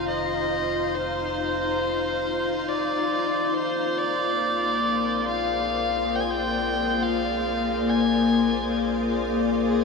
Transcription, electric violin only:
0.08 D#5
0.95 C5
2.68 D5
3.55 C5
3.98 D5
5.28 F5
6.16 G5
6.21 G#5
6.30 G5
7.03 F5
7.89 G#5
9.66 G#4

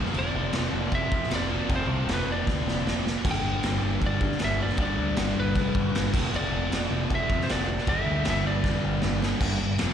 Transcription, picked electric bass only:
0.14 F1
0.34 F1
0.53 F1
0.72 F1
0.92 F1
1.12 F2
1.29 F1
1.69 F1
1.87 C2
2.07 F1
2.26 F1
2.47 D2
2.67 F1
2.86 F1
3.25 G1
3.43 G1
3.63 G1
3.82 G1
4.01 G1
4.21 G2
4.41 G1
4.77 G1
4.98 D2
5.17 G1
5.37 G1
5.55 F1
5.75 G1
5.94 G1
6.14 F1
6.32 F1
6.52 F1
6.71 F1
6.91 F1
7.10 F1
7.29 F2
7.50 F1
7.87 G1
8.06 D2
8.27 G1
8.45 G1
8.64 F1
8.84 G1
9.04 G1
9.41 G1
9.59 G1
9.79 F1

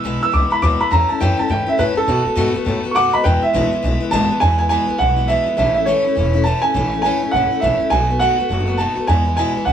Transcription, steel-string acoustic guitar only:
0.04 E2 B2 E3 G#3 B3 E4
0.21 E3 G#3 B3 E4
0.32 E3 G#3 B3 E4
0.50 E3 G#3 B3 E4
0.62 E2 B2 E3 G#3 B3 E4
0.80 E3 G#3 B3 E4
0.91 A2 E3 A3 C#4 E4
1.09 A3 C#4 E4
1.20 A2 E3 A3 C#4 E4
1.37 A3 C#4 E4
1.48 E3 A3 C#4 E4
1.66 A3 C#4 E4
1.78 A2 E3 A3 C#4 E4
1.95 A3 C#4 E4
2.07 B2 D#3 A3 B3 F#4
2.25 A3 B3 F#4
2.35 B2 D#3 A3 B3 F#4
2.54 A3 B3 F#4
2.65 D#3 A3 B3 F#4
2.83 A3 B3 F#4
2.95 B2 D#3 A3 B3 F#4
3.13 A3 B3 F#4
3.24 E2 B2 E3 G#3 B3 E4
3.42 E3 G#3 B3 E4
3.53 E2 B2 E3 G#3 B3 E4
3.71 E3 G#3 B3 E4
3.83 E3 G#3 B3 E4
4.00 E3 G#3 B3 E4
4.11 E2 B2 E3 G#3 B3 E4
4.29 E3 G#3 B3 E4
4.41 E2 B2 E3 G#3 B3 E4
4.58 E3 G#3 B3 E4
4.69 E2 B2 E3 G#3 B3 E4
4.87 E3 G#3 B3 E4
4.98 E3 G#3 B3 E4
5.16 E3 G#3 B3 E4
5.28 E2 B2 E3 G#3 B3 E4
5.46 E3 G#3 B3 E4
5.57 A2 E3 A3 C#4 E4
5.74 A3 C#4 E4
5.86 A2 E3 A3 C#4 E4
6.04 A3 C#4 E4
6.15 E3 A3 C#4 E4
6.33 A3 C#4 E4
6.45 A2 E3 A3 C#4 E4
6.62 A3 C#4 E4
6.74 A2 E3 A3 C#4 E4
6.92 A3 C#4 E4
7.04 A2 E3 A3 C#4 E4
7.21 A3 C#4 E4
7.33 E3 A3 C#4 E4
7.51 A3 C#4 E4
7.62 A2 E3 A3 C#4 E4
7.79 A3 C#4 E4
7.90 B2 D#3 A3 B3 F#4
8.08 A3 B3 F#4
8.20 B2 D#3 A3 B3 F#4
8.38 A3 B3 F#4
8.49 D#3 A3 B3 F#4
8.67 A3 B3 F#4
8.78 B2 D#3 A3 B3 F#4
8.95 A3 B3 F#4
9.07 E2 B2 E3 G#3 B3 E4
9.25 E3 G#3 B3 E4
9.37 E2 B2 E3 G#3 B3 E4
9.54 E3 G#3 B3 E4
9.66 E3 G#3 B3 E4

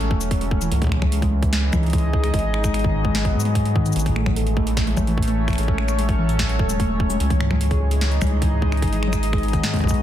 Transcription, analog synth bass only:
Already playing: A1
0.11 E1
0.72 C#2
1.73 C#2
2.34 G#1
3.35 G#2
3.96 A1
4.97 A1
5.58 A1
6.59 E1
7.20 C#2
8.22 C#2
8.82 G#1
9.84 B1

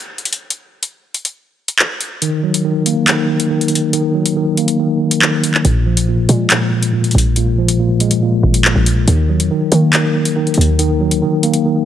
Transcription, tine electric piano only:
2.22 D#3
2.43 F#3
2.65 D#3
2.86 A#3
3.08 D#3
3.51 D#3
3.93 D#3
4.15 F#3
4.36 D#3
4.58 A#3
4.79 D#3
5.22 D#3
5.65 A#2
5.86 F3
6.08 A#2
6.29 G#3
6.51 A#2
6.93 A#2
7.37 A#2
7.58 F3
7.79 A#2
8.01 G#3
8.22 A#2
8.64 A#2
9.08 D#3
9.29 F#3
9.51 D#3
9.72 A#3
9.93 D#3
10.36 D#3
10.79 D#3
11.01 F#3
11.22 D#3
11.43 A#3
11.65 D#3

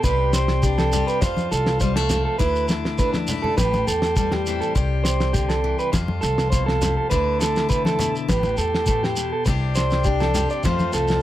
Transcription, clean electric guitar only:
0.04 B4
0.34 C5
0.63 G4
0.78 A4
1.07 B4
1.22 C5
1.51 A4
1.81 C5
1.96 A4
2.25 A4
2.38 B4
2.68 muted clean electric guitar stroke
2.99 B4
3.13 muted clean electric guitar stroke
3.42 A4
3.57 B4
3.87 A4
4.16 A4
4.32 G4
4.60 A4
4.75 muted clean electric guitar stroke
5.04 C5
5.33 G4
5.49 A4
5.79 B4
5.92 muted clean electric guitar stroke
6.21 A4
6.50 C5
6.66 A4
6.97 A4
7.10 B4
7.40 A4
7.70 B4
7.85 A4
8.29 B4
8.58 A4
8.87 A4
9.03 G4
9.33 A4
9.46 muted clean electric guitar stroke
9.75 C5
10.05 G4
10.20 A4
10.51 D5
10.65 C5
10.94 A4

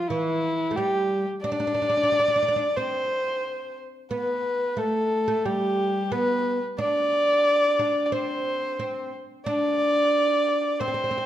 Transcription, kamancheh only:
0.02 F4
0.08 E4
0.75 G4
1.42 D5
2.76 C5
4.13 B4
4.78 A4
5.45 G4
6.12 B4
6.78 D5
8.05 D5
8.12 C5
9.46 D5
10.80 C5

